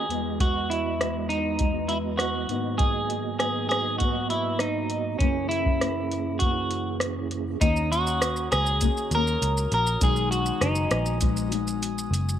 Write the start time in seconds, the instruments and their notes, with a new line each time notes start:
Already playing: nylon-string guitar D#3 C#4 F#4, clean electric guitar G#4
0.08 tonewheel organ E2 G#3 B3 D#5, nylon-string guitar E3 G#3 B3, closed hi-hat
0.14 tonewheel organ F#4
0.40 clean electric guitar F#4, kick, closed hi-hat
0.70 clean electric guitar E4, closed hi-hat
0.98 nylon-string guitar E3 G#3 B3, cross-stick, closed hi-hat
1.29 clean electric guitar D#4, closed hi-hat
1.59 nylon-string guitar E3 G#3 B3, kick, closed hi-hat
1.89 clean electric guitar E4, closed hi-hat
2.17 clean electric guitar F#4, cross-stick, closed hi-hat
2.49 tonewheel organ G#2 A#3 B3 D#5, nylon-string guitar G#2 D#3 F#3 B3 D#4, closed hi-hat
2.53 tonewheel organ F#4
2.78 clean electric guitar G#4, kick, closed hi-hat
3.10 closed hi-hat
3.39 nylon-string guitar D#3 F#3 B3 D#4, clean electric guitar G#4, cross-stick, closed hi-hat
3.69 clean electric guitar G#4, cross-stick, closed hi-hat
3.98 nylon-string guitar F#3, clean electric guitar F#4, kick, closed hi-hat
4.04 nylon-string guitar B3
4.30 clean electric guitar E4, closed hi-hat
4.59 clean electric guitar D#4, cross-stick, closed hi-hat
4.90 closed hi-hat
5.19 tonewheel organ F#2 A#3 C#4, nylon-string guitar F#2 C#3 E3 A#3 C#4, clean electric guitar C#4, kick, closed hi-hat
5.23 tonewheel organ E4 G#4
5.49 clean electric guitar E4, closed hi-hat
5.66 kick
5.80 nylon-string guitar C#3 E3 A#3 C#4, cross-stick, closed hi-hat
6.12 closed hi-hat
6.39 nylon-string guitar C#3 E3, clean electric guitar F#4, kick, closed hi-hat
6.44 nylon-string guitar A#3 C#4
6.71 closed hi-hat
7.00 cross-stick, closed hi-hat
7.31 closed hi-hat
7.60 picked electric bass D#2, nylon-string guitar D#3 A#3 C#4, clean electric guitar D#4, glass harmonica F#4 C#5 A#5 D#6, kick, closed hi-hat, shaker
7.65 nylon-string guitar F#4
7.76 shaker
7.92 clean electric guitar F#4, closed hi-hat, shaker
8.07 shaker
8.22 cross-stick, closed hi-hat, shaker
8.36 shaker
8.52 picked electric bass C#2, clean electric guitar G#4, cross-stick, closed hi-hat, shaker
8.66 shaker
8.80 nylon-string guitar D#3 A#3 C#4 F#4, kick, closed hi-hat, shaker
8.97 shaker
9.11 picked electric bass D#2, nylon-string guitar C#4 F#4, clean electric guitar A#4, closed hi-hat, shaker
9.15 nylon-string guitar A#3
9.27 shaker
9.42 picked electric bass C#2, closed hi-hat, shaker
9.57 shaker
9.72 picked electric bass A#1, clean electric guitar A#4, closed hi-hat, shaker
9.87 shaker
10.01 picked electric bass B1, nylon-string guitar D#3 G#3 D#4, glass harmonica B3 G#5 D#6, clean electric guitar G#4, kick, closed hi-hat, shaker
10.05 nylon-string guitar F#4
10.16 shaker
10.31 clean electric guitar F#4, closed hi-hat, shaker
10.46 shaker
10.61 picked electric bass F#1, clean electric guitar D#4, cross-stick, closed hi-hat, shaker
10.75 shaker
10.91 picked electric bass A#1, cross-stick, closed hi-hat, shaker
11.06 shaker
11.20 nylon-string guitar D#3 G#3 D#4 F#4, kick, closed hi-hat, shaker
11.37 shaker
11.50 nylon-string guitar G#3 D#4 F#4, closed hi-hat, shaker
11.67 shaker
11.83 closed hi-hat, shaker
11.98 shaker
12.11 picked electric bass F#1, closed hi-hat, shaker
12.29 shaker